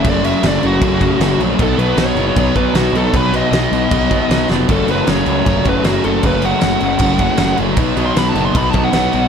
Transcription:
<<
  \new Staff \with { instrumentName = "Lead electric guitar" } { \time 4/4 \key fis \minor \tempo 4 = 155 d''8 e''8 d''8 fis'2 r8 | a'8 b'8 cis''4. b'8 fis'8 a'8 | b'8 dis''2. r8 | a'8 b'8 cis''4. b'8 fis'8 a'8 |
b'8 fis''2. r8 | \tuplet 3/2 { r4 c'''8 b''8 a''8 c'''8 b''8 a''8 fis''8~ } fis''4 | }
  \new Staff \with { instrumentName = "Distorted electric guitar" } { \clef bass \time 4/4 \key fis \minor <fis, cis fis a cis'>8 <fis, cis fis a cis'>8 <fis, cis fis a cis'>8 <fis, cis fis a cis'>8 <fis, cis fis a cis'>8 <fis, cis fis a cis'>8 <fis, cis fis a cis'>8 <fis, cis fis a cis'>8 | <b, fis b dis'>8 <b, fis b dis'>8 <b, fis b dis'>8 <b, fis b dis'>8 <b, fis b dis'>8 <b, fis b dis'>8 <b, fis b dis'>8 <b, fis b dis'>8 | <b, fis b dis'>8 <b, fis b dis'>8 <b, fis b dis'>8 <b, fis b dis'>8 <b, fis b dis'>8 <b, fis b dis'>8 <b, fis b dis'>8 <b, fis b dis'>8 | <fis, cis fis a cis'>8 <fis, cis fis a cis'>8 <fis, cis fis a cis'>8 <fis, cis fis a cis'>8 <fis, cis fis a cis'>8 <fis, cis fis a cis'>8 <fis, cis fis a cis'>8 <fis, cis fis a cis'>8 |
<fis, cis fis a cis'>8 <fis, cis fis a cis'>8 <fis, cis fis a cis'>8 <fis, cis fis a cis'>8 <fis, cis fis a cis'>8 <fis, cis fis a cis'>8 <fis, cis fis a cis'>8 <fis, cis fis a cis'>8 | <b, fis b dis'>8 <b, fis b dis'>8 <b, fis b dis'>8 <b, fis b dis'>8 <b, fis b dis'>8 <b, fis b dis'>8 <b, fis b dis'>8 <b, fis b dis'>8 | }
  \new Staff \with { instrumentName = "Distorted electric guitar" } { \clef bass \time 4/4 \key fis \minor <fis, cis fis>8 <fis, cis fis>8 <fis, cis fis>8 <fis, cis fis>8 <fis, cis fis>8 <fis, cis fis>8 <fis, cis fis>8 <fis, cis fis>8 | <b, fis b>8 <b, fis b>8 <b, fis b>8 <b, fis b>8 <b, fis b>8 <b, fis b>8 <b, fis b>8 <b, fis b>8 | <b, fis b>8 <b, fis b>8 <b, fis b>8 <b, fis b>8 <b, fis b>8 <b, fis b>8 <b, fis b>8 <b, fis b>8 | <fis, cis fis>8 <fis, cis fis>8 <fis, cis fis>8 <fis, cis fis>8 <fis, cis fis>8 <fis, cis fis>8 <fis, cis fis>8 <fis, cis fis>8 |
<fis, cis fis>8 <fis, cis fis>8 <fis, cis fis>8 <fis, cis fis>8 <fis, cis fis>8 <fis, cis fis>8 <fis, cis fis>8 <fis, cis fis>8 | <b, fis b>8 <b, fis b>8 <b, fis b>8 <b, fis b>8 <b, fis b>8 <b, fis b>8 <b, fis b>8 <b, fis b>8 | }
  \new Staff \with { instrumentName = "Picked electric bass" } { \clef bass \time 4/4 \key fis \minor fis,,4 fis,,8 fis,,8 fis,,4 fis,,8 bes,,8 | b,,8 b,,8 b,,8 fis,,8 b,,8 b,,8 b,,8 b,,8 | b,,4 b,,8 b,,8 b,,4 b,,8 f,,8 | fis,,8 fis,,8 fis,,8 cis,8 fis,,8 fis,,8 fis,,8 fis,,8 |
fis,,4 fis,,8 fis,,8 fis,,4 fis,,8 fis,,8 | b,,8 b,,8 b,,8 fis,,8 b,,8 b,,8 b,,8 b,,8 | }
  \new DrumStaff \with { instrumentName = "Drums" } \drummode { \time 4/4 <cymc bd>8 cymc8 <cymc sn>8 cymc8 <cymc bd>8 <cymc bd>8 <cymc sn>8 cymc8 | <cymc bd>8 cymc8 <cymc sn>8 cymc8 <cymc bd>8 <cymc bd>8 <cymc sn>8 cymc8 | <cymc bd>8 cymc8 <cymc sn>8 cymc8 <cymc bd>8 <cymc bd>8 <cymc sn>8 sn8 | <cymc bd>8 cymc8 <cymc sn>8 cymc8 <cymc bd>8 <cymc bd>8 <cymc sn>8 cymc8 |
<cymc bd>8 cymc8 <cymc sn>8 cymc8 <cymc bd>8 <cymc bd>8 <cymc sn>8 cymc8 | <cymc bd>8 cymc8 <cymc sn>8 cymc8 <cymc bd>8 <cymc bd>8 <cymc sn>8 cymc8 | }
>>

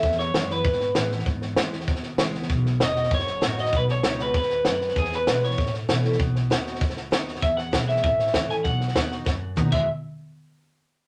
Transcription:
<<
  \new Staff \with { instrumentName = "Clean electric guitar" } { \time 4/4 \key e \major \tempo 4 = 195 e''8 cis''4 b'2 r8 | r1 | r4 dis''4 cis''4. dis''8 | b'8 cis''4 b'8 b'2 |
gis'8 b'4 cis''4 r4. | r1 | e''8 fis''4 e''8 e''4. gis''8 | fis''2. r8 e''8 |
r1 | }
  \new Staff \with { instrumentName = "Steel-string acoustic guitar" } { \time 4/4 \key e \major << { r4 <e gis b e'>8 <b e'>8 r4 <e gis b e'>8 <b e'>8 | r4 <e gis b e'>8 <b e'>8 r4 <e gis b e'>8 <b e'>8 | r4 <fis b dis' fis'>8 <dis' fis'>8 r4 <fis b dis' fis'>8 <dis' fis'>8 | r4 <fis b dis' fis'>8 <dis' fis'>8 r2 |
r4 <e gis b e'>8 <b e'>8 r4 <e a cis' e'>8 <cis' e'>8 | r4 <fis b dis' fis'>8 <dis' fis'>8 r4 <fis b dis' fis'>4 | r4 <e gis b e'>4 r4 <e a cis' e'>8 <cis' e'>8 | r4 <fis b dis' fis'>8 <dis' fis'>8 r4 <fis b dis' fis'>8 <e, b, e gis b e'>8 |
r1 | } \\ { e,2 b,2 | e,2 b,2 | b,2 fis,2 | b,2 gis,4 fis,4 |
e,2 a,2 | b,2 fis,2 | e,2 a,2 | b,2 fis,4. r8 |
r1 | } >> }
  \new Staff \with { instrumentName = "Upright bass" } { \clef bass \time 4/4 \key e \major e,4 fis,4 gis,4 a,4 | gis,4 e,4 dis,4 cis,4 | b,,4 e,,4 fis,,4 a,,4 | b,,4 cis,4 dis,4 fis,4 |
e,4 b,4 a,4 b,4 | b,,4 dis,4 cis,4 dis,4 | e,4 b,,4 a,,4 cis,8 r8 | b,,4 dis,4 fis,4 b,8 e,8 |
r1 | }
  \new DrumStaff \with { instrumentName = "Drums" } \drummode { \time 4/4 <bd sn>16 sn16 sn8 <hhp sn>8 sn8 <bd sn>16 sn16 sn8 <hhp sn>8 sn16 sn16 | <bd sn>8 sn8 <hhp sn>8 sn16 sn16 <bd sn>16 sn16 sn8 <hhp sn>8 sn16 sn16 | <bd sn>8 sn8 <hhp sn>8 sn16 sn16 <bd sn>16 sn16 sn8 <hhp sn>8 sn16 sn16 | <bd sn>8 sn8 <hhp sn>8 sn8 <bd sn>16 sn16 sn8 <hhp sn>8 sn16 sn16 |
<bd sn>16 sn16 sn8 <hhp sn>8 sn16 sn16 <bd sn>16 sn16 sn8 <hhp sn>8 sn16 sn16 | <bd sn>8 sn8 <hhp sn>8 sn16 sn16 <bd sn>16 sn16 sn8 <hhp sn>8 sn16 sn16 | <bd sn>8 sn8 <hhp bd sn>8 sn16 sn16 <bd sn>8 sn16 sn16 <hhp bd sn>8 sn8 | <bd sn>8 sn16 sn16 <hhp bd sn>8 sn8 <bd sn>4 <hhp bd toml>8 <cymc bd>8 |
r4 r4 r4 r4 | }
>>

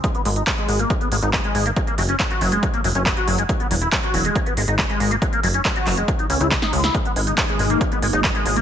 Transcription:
<<
  \new Staff \with { instrumentName = "Acid bass" } { \clef bass \time 4/4 \key gis \minor \tempo 4 = 139 gis16 b16 gis16 dis'16 gis16 gis16 gis16 ais16 gis16 b16 gis16 dis'16 gis16 gis16 gis16 ais16 | fis16 ais16 fis16 cis'16 fis16 fis'16 fis16 gis16 fis16 ais16 fis16 cis'16 fis16 fis'16 fis16 gis16 | fis16 b16 fis16 e'16 fis16 fis'16 fis16 gis16 gis16 b16 gis16 dis'16 gis16 gis16 gis16 ais16 | fis16 ais16 fis16 cis'16 fis16 fis'16 fis16 gis16 gis16 dis'16 cis'16 e'16 gis16 dis'16 gis16 e'16 |
gis16 b16 gis16 dis'16 gis16 gis16 gis16 ais16 gis16 b16 gis16 dis'16 gis16 gis16 gis16 ais16 | }
  \new Staff \with { instrumentName = "Analog synth pad" } { \clef bass \time 4/4 \key gis \minor r1 | r1 | r1 | r1 |
<b, dis gis ais dis'>1 | }
  \new Staff \with { instrumentName = "Analog synth bass" } { \clef bass \time 4/4 \key gis \minor r8 gis,,8 r8 gis,,8 r8 gis,,16 gis,,8 r16 gis,,8 | r8 fis,,8 r8 fis,,8 r8 fis,,16 fis,,8 r16 fis,,8 | r8 e,,8 r8 e,,8 r8 gis,,16 gis,,8 r16 gis,,8 | r8 fis,,8 r8 fis,,8 r8 cis,16 cis,8 r16 cis,8 |
r8 gis,,8 r8 gis,,8 r8 gis,,16 gis,,8 r16 gis,,8 | }
  \new DrumStaff \with { instrumentName = "Drums" } \drummode { \time 4/4 <hh bd>16 hh16 hho16 hh16 <hc hh bd>16 hh16 hho16 hh16 <hh bd>16 hh16 hho16 hh16 <hc hh bd>16 hh16 hho16 hh16 | <hh bd>16 hh16 hho16 hh16 <hc hh bd>16 hh16 hho16 hh16 <hh bd>16 hh16 hho16 hh16 <hc hh bd>16 hh16 hho16 hh16 | <hh bd>16 hh16 hho16 hh16 <hc hh bd>16 hh16 hho16 hh16 <hh bd>16 hh16 hho16 hh16 <hc hh bd>16 hh16 hho16 hh16 | <hh bd>16 hh16 hho16 hh16 <hc hh bd>16 hh16 <hc hho>16 hh16 <hh bd>16 hh16 hho16 hh16 <hc hh bd sn>16 <hh sn>16 hho16 <hh sn>16 |
<hh bd>16 hh16 hho16 hh16 <hc hh bd>16 hh16 hho16 hh16 <hh bd>16 hh16 hho16 hh16 <hc hh bd>16 hh16 hho16 hh16 | }
>>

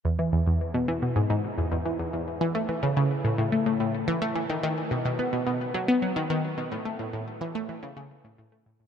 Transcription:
\new Staff \with { instrumentName = "Synth arpeggio sound" } { \clef bass \time 4/4 \key b \mixolydian \tempo 4 = 108 e,16 e16 e,16 e,16 r16 b,16 e16 b,16 gis,16 gis,16 r16 e,16 e,16 e16 e,16 e,16 | r16 e16 a16 e16 cis16 cis16 r16 a,16 a,16 a16 a,16 a,16 r16 e16 a16 e16 | dis16 dis16 r16 b,16 b,16 b16 b,16 b,16 r16 fis16 b16 fis16 dis16 dis16 r16 b,16 | a,16 a16 a,16 a,16 r16 e16 a16 e16 cis16 cis16 r16 a,16 a,16 a16 a,16 a,16 | }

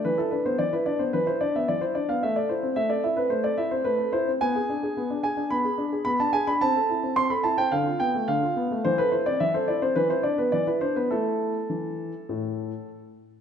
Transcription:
\new Staff \with { instrumentName = "Grand piano" } { \time 4/4 \key a \minor \tempo 4 = 108 << { b'16 a'16 b'16 c''16 d''16 b'16 d''16 c''16 b'16 c''16 d''16 e''16 d''16 c''16 d''16 f''16 | e''16 d''16 c''8 e''16 d''16 e''16 b'16 c''16 d''16 e''16 c''16 b'8 c''8 | gis''4. gis''8 b''4 b''16 a''16 gis''16 b''16 | a''4 c'''16 b''16 a''16 g''16 f''8 g''8 f''4 |
c''16 b'16 c''16 d''16 e''16 c''16 d''16 c''16 b'16 c''16 d''16 b'16 d''16 b'16 c''16 b'16 | a'2. r4 | } \\ { e16 e'16 d'16 b16 e16 e'16 d'16 b16 e16 e'16 d'16 b16 e16 e'16 d'16 b16 | a16 a'16 e'16 c'16 a16 a'16 e'16 c'16 a16 a'16 e'16 c'16 a16 a'16 e'16 c'16 | b16 gis'16 d'16 gis'16 b16 d'16 gis'16 d'16 b16 gis'16 d'16 gis'16 b16 d'16 gis'16 d'16 | c'16 a'16 e'16 c'16 c'16 a'16 e'16 c'16 d16 f'16 b16 a16 d16 f'16 b16 a16 |
e16 a'16 e'16 c'16 e16 a'16 e'16 c'16 e16 e'16 d'16 b16 e16 e'16 d'16 b16 | <a e'>4 e4 a,4 r4 | } >> }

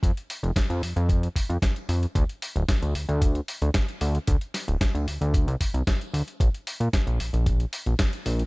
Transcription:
<<
  \new Staff \with { instrumentName = "Analog synth bass" } { \clef bass \time 4/4 \key d \minor \tempo 4 = 113 f,16 r8 f,,16 r16 f,16 f,16 f,8 r8 f,16 r8 f,16 r16 | d,16 r8 d,,16 r16 d,16 d,16 d,8 r8 d,16 r8 d,16 r16 | d,16 r8 d,,16 r16 d,16 d,16 d,8 c,16 r16 c,16 r8 d,16 r16 | bes,,16 r8 bes,16 r16 bes,,16 bes,,16 bes,,8 r8 bes,,16 r8 bes,,16 r16 | }
  \new DrumStaff \with { instrumentName = "Drums" } \drummode { \time 4/4 <hh bd>16 hh16 hho16 hh16 <hh bd sn>16 hh16 hho16 hh16 <hh bd>16 hh16 <hho bd>16 hh16 <hh bd sn>16 hh16 hho16 hh16 | <hh bd>16 hh16 hho16 hh16 <hh bd sn>16 hh16 hho16 hh16 <hh bd>16 hh16 hho16 hh16 <hh bd sn>16 hh16 hho16 hh16 | <hh bd>16 hh16 <hho sn>16 hh16 <hh bd sn>16 hh16 hho16 hh16 <hh bd>16 hh16 <hho bd>16 hh16 <hh bd sn>16 hh16 hho16 hh16 | <hh bd>16 hh16 hho16 hh16 <hh bd sn>16 hh16 hho16 hh16 <hh bd>16 hh16 hho16 hh16 <hh bd sn>16 hh16 hho16 hh16 | }
>>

